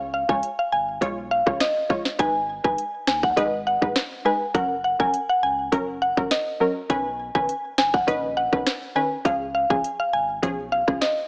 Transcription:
Already playing: sub bass C#2
0.14 synth pluck F5
0.29 sub bass C#2, synth stab G#3 F4 C#5, synth pluck G#5, kick
0.43 closed hi-hat
0.59 synth pluck F5
0.72 sub bass G#1, synth pluck G#5
1.01 sub bass B1, synth stab G#3 F4 C#5, kick, closed hi-hat
1.31 synth pluck F5
1.46 sub bass C#2, synth stab G#3 F4 C#5, kick, cross-stick
1.60 synth pluck D#5, snare, closed hi-hat
1.89 synth stab G#3 F4 C#5, kick
2.05 snare
2.19 sub bass G#1, synth stab G#3 D#4 B4, synth pluck G#5, kick, closed hi-hat
2.64 sub bass G#1, synth stab G#3 D#4 B4, synth pluck G#5, kick
2.78 closed hi-hat
3.07 sub bass D#2, synth pluck G#5, snare
3.23 synth pluck F#5, kick
3.36 sub bass G#1, synth stab G#3 D#4 B4, synth pluck D#5, kick, closed hi-hat
3.67 synth pluck F#5
3.81 sub bass A#1, synth stab G#3 D#4 B4, kick
3.96 snare, closed hi-hat
4.25 synth stab G#3 D#4 B4, synth pluck G#5
4.54 sub bass F#1, synth stab F#3 C#4 A#4, synth pluck F#5, kick, closed hi-hat
4.84 synth pluck F#5
4.99 sub bass F#1, synth stab F#3 C#4 A#4, synth pluck G#5, kick
5.14 closed hi-hat
5.29 synth pluck F#5
5.43 sub bass C#2, synth pluck G#5
5.72 sub bass F#1, synth stab F#3 C#4 A#4, kick, closed hi-hat
6.02 synth pluck F#5
6.17 sub bass G#1, synth stab F#3 C#4 A#4, kick
6.31 synth pluck D#5, snare, closed hi-hat
6.60 synth stab F#3 C#4 A#4
6.89 sub bass B1, synth stab D#3 C#4 B4, synth pluck G#5, kick, closed hi-hat
7.35 sub bass B1, synth stab D#3 C#4 B4, synth pluck G#5, kick
7.49 closed hi-hat
7.78 sub bass F#1, synth pluck G#5, snare
7.94 synth pluck F#5, kick
8.07 sub bass A#1, synth stab D#3 C#4 B4, synth pluck D#5, kick, closed hi-hat
8.37 synth pluck F#5
8.52 sub bass B1, synth stab D#3 C#4 B4, kick
8.67 snare, closed hi-hat
8.95 synth stab D#3 C#4 B4, synth pluck G#5
9.25 sub bass C#2, synth stab F3 C#4 G#4, synth pluck F5, kick, closed hi-hat
9.55 synth pluck F5
9.70 sub bass C#2, synth stab F3 C#4 G#4, synth pluck G#5, kick
9.84 closed hi-hat
10.00 synth pluck F5
10.13 sub bass G#1, synth pluck G#5
10.42 sub bass B1, synth stab F3 C#4 G#4, kick, closed hi-hat
10.72 synth pluck F5
10.87 sub bass C#2, synth stab F3 C#4 G#4, kick, cross-stick
11.01 synth pluck D#5, snare, closed hi-hat

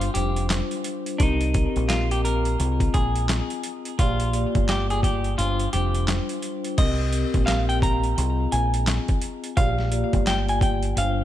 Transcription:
Already playing: clean electric guitar F4
0.01 closed hi-hat
0.14 picked electric bass F1, vibraphone G3 D4 F4 C5, clean electric guitar G4, closed hi-hat
0.36 closed hi-hat
0.49 vibraphone G3 D4 F4 C5, snare, clap, closed hi-hat
0.71 closed hi-hat
0.84 vibraphone G3 D4 F4 C5, closed hi-hat
1.06 closed hi-hat
1.18 picked electric bass C2, vibraphone C4 G4 A#4 D#5, clean electric guitar D#4, kick, closed hi-hat
1.41 closed hi-hat
1.52 vibraphone C4 G4 A#4 D#5, kick, closed hi-hat
1.76 picked electric bass A#1, closed hi-hat
1.86 vibraphone C4 G4 A#4 D#5, clean electric guitar F4, snare, clap, closed hi-hat
2.11 clean electric guitar G4, closed hi-hat
2.25 clean electric guitar A#4, closed hi-hat
2.45 closed hi-hat
2.58 picked electric bass C2, vibraphone C4 F4 G#4 D#5, closed hi-hat
2.80 kick, closed hi-hat
2.94 picked electric bass A#1, clean electric guitar G#4, kick, closed hi-hat
3.16 closed hi-hat
3.29 snare, clap, closed hi-hat
3.50 closed hi-hat
3.63 closed hi-hat
3.85 closed hi-hat
3.98 picked electric bass A#1, vibraphone A#3 F4 G4 D5, clean electric guitar F4, kick, closed hi-hat
4.20 closed hi-hat
4.33 vibraphone A#3 F4 G4 D5, closed hi-hat
4.55 picked electric bass G1, kick, closed hi-hat
4.69 clean electric guitar G4, snare, clap, closed hi-hat
4.90 clean electric guitar G#4, closed hi-hat
5.03 clean electric guitar G4, kick, closed hi-hat
5.24 closed hi-hat
5.37 picked electric bass G1, vibraphone G3 D4 F4 C5, clean electric guitar F4, closed hi-hat
5.60 closed hi-hat
5.72 picked electric bass F1, vibraphone G3 D4 F4 C5, clean electric guitar G4, closed hi-hat
5.95 closed hi-hat
6.07 vibraphone G3 D4 F4 C5, snare, clap, closed hi-hat
6.29 closed hi-hat
6.42 vibraphone G3 D4 F4 C5, closed hi-hat
6.64 closed hi-hat
6.78 picked electric bass C2, vibraphone C4 G4 A#4 D#5, clean electric guitar D#5, kick, closed hi-hat, crash
7.10 vibraphone C4 G4 A#4 D#5, closed hi-hat
7.34 picked electric bass A#1, kick, closed hi-hat
7.45 vibraphone C4 G4 A#4 D#5, clean electric guitar F5, snare, clap, closed hi-hat
7.69 clean electric guitar G5, closed hi-hat
7.82 clean electric guitar A#5, kick, closed hi-hat
8.03 closed hi-hat
8.16 picked electric bass C2, vibraphone C4 F4 G#4 D#5, closed hi-hat
8.52 picked electric bass A#1, clean electric guitar G#5, closed hi-hat
8.74 closed hi-hat
8.87 snare, clap, closed hi-hat
9.08 kick, closed hi-hat
9.22 closed hi-hat
9.44 closed hi-hat
9.56 picked electric bass A#1, vibraphone A#3 F4 G4 D5, clean electric guitar F5, kick, closed hi-hat
9.79 snare
9.91 vibraphone A#3 F4 G4 D5, closed hi-hat
10.13 picked electric bass G1, kick, closed hi-hat
10.27 clean electric guitar G5, snare, clap, closed hi-hat
10.49 clean electric guitar G#5, closed hi-hat
10.61 clean electric guitar G5, kick, closed hi-hat
10.83 closed hi-hat
10.95 picked electric bass G1, vibraphone G3 D4 F4 C5, clean electric guitar F5, closed hi-hat

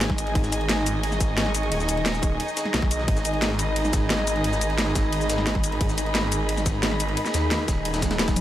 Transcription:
Already playing: detuned saw bass G#1, analog synth pad D#3 D#4 G#4 G#5, string section D#4 G#4 D#5 G#5
0.01 snare, closed hi-hat, ride
0.10 kick, snare
0.18 closed hi-hat, ride, cabasa
0.27 ride
0.35 detuned saw bass G#1, analog synth pad C#6, kick, closed hi-hat, ride
0.44 snare, cabasa
0.52 closed hi-hat, ride, cabasa
0.61 ride
0.69 snare, closed hi-hat, ride
0.86 closed hi-hat, ride, cabasa
1.03 closed hi-hat, ride
1.12 snare, cabasa
1.20 kick, snare, closed hi-hat, ride, cabasa
1.38 snare, closed hi-hat, ride
1.46 snare
1.55 closed hi-hat, ride, cabasa
1.63 ride
1.72 detuned saw bass D#1, closed hi-hat, ride
1.80 snare, cabasa
1.89 closed hi-hat, ride, cabasa
1.97 ride
2.06 snare, closed hi-hat, ride
2.14 cabasa
2.23 detuned saw bass D#1, kick, closed hi-hat, ride, cabasa
2.40 closed hi-hat, ride
2.48 cabasa
2.57 snare, closed hi-hat, ride, cabasa
2.65 snare
2.74 detuned saw bass B1, snare, closed hi-hat, ride
2.82 kick, snare
2.91 closed hi-hat, ride, cabasa
3.00 snare
3.08 detuned saw bass G#1, analog synth pad G#5, kick, closed hi-hat, ride
3.17 snare, cabasa
3.25 closed hi-hat, ride, cabasa
3.34 ride
3.42 snare, closed hi-hat, ride
3.59 string section B5, closed hi-hat, ride, cabasa
3.76 closed hi-hat, ride
3.85 snare, cabasa
3.93 kick, snare, closed hi-hat, ride, cabasa
4.10 snare, closed hi-hat, ride
4.19 snare
4.27 closed hi-hat, ride, cabasa
4.36 ride
4.44 detuned saw bass G#1, closed hi-hat, ride
4.53 snare, cabasa
4.61 closed hi-hat, ride, cabasa
4.70 ride
4.78 snare, closed hi-hat, ride
4.95 kick, snare, closed hi-hat, ride, cabasa
5.13 closed hi-hat, ride
5.21 ride, cabasa
5.30 snare, closed hi-hat, ride, cabasa
5.38 snare
5.47 snare, closed hi-hat, ride
5.55 kick, snare
5.64 closed hi-hat, ride, cabasa
5.72 ride
5.81 detuned saw bass G#1, analog synth pad B5, kick, closed hi-hat, ride
5.89 snare, cabasa
5.98 closed hi-hat, ride, cabasa
6.06 ride
6.15 snare, closed hi-hat, ride
6.32 closed hi-hat, ride, cabasa
6.49 closed hi-hat, ride
6.57 snare, cabasa
6.66 kick, snare, closed hi-hat, ride, cabasa
6.83 snare, closed hi-hat, ride
6.92 snare
7.00 closed hi-hat, ride, cabasa
7.09 ride
7.17 closed hi-hat, ride
7.26 snare, cabasa
7.34 detuned saw bass D#2, snare, closed hi-hat, ride, cabasa
7.51 snare, closed hi-hat, ride
7.68 detuned saw bass D#1, kick, snare, closed hi-hat, ride, cabasa
7.85 closed hi-hat, ride, swell
7.94 snare, ride, cabasa
8.02 kick, snare, closed hi-hat, ride, cabasa
8.11 snare, ride
8.19 snare, closed hi-hat, ride
8.28 kick, snare, ride, cabasa
8.36 closed hi-hat, high tom, ride, cabasa

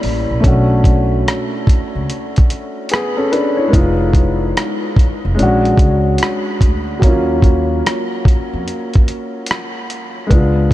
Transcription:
Already playing: upright piano G3 A#3 C#4 E4
0.03 upright bass A1, open hi-hat
0.31 upright bass A#1
0.40 upright piano A3 C#4, kick
0.44 upright bass B1, upright piano D4 F#4, closed hi-hat
0.84 kick, closed hi-hat
1.28 cross-stick, closed hi-hat
1.67 kick, closed hi-hat
1.96 upright bass C#2
2.10 closed hi-hat
2.36 kick, closed hi-hat
2.50 closed hi-hat
2.89 upright piano B3 G#4, closed hi-hat
2.94 cross-stick
3.17 upright piano C#4 A4
3.32 upright piano D4 B4, closed hi-hat
3.57 upright piano E4 C#5
3.68 upright piano G#3 B3
3.73 upright bass F1, upright piano D#4 F4, kick, closed hi-hat
4.13 kick, closed hi-hat
4.57 cross-stick, closed hi-hat
4.96 kick, closed hi-hat
5.25 upright bass F1
5.35 upright piano G#3 C#4
5.39 upright bass A#1, upright piano D4 F#4, closed hi-hat
5.65 closed hi-hat
5.78 upright bass C#2, kick, closed hi-hat
6.18 closed hi-hat
6.23 cross-stick
6.61 upright bass D2, kick, closed hi-hat
7.00 upright bass D#2, upright piano F#3 A#3, kick, closed hi-hat
7.04 upright piano C#4 F4
7.42 kick, closed hi-hat
7.86 cross-stick, closed hi-hat
8.25 kick, closed hi-hat
8.53 upright bass F2
8.68 closed hi-hat
8.94 kick, closed hi-hat
9.08 closed hi-hat
9.46 closed hi-hat
9.51 cross-stick
9.90 closed hi-hat
10.27 upright piano G#3 B3, kick
10.31 upright bass C#2, upright piano D4 F4, closed hi-hat
10.71 kick

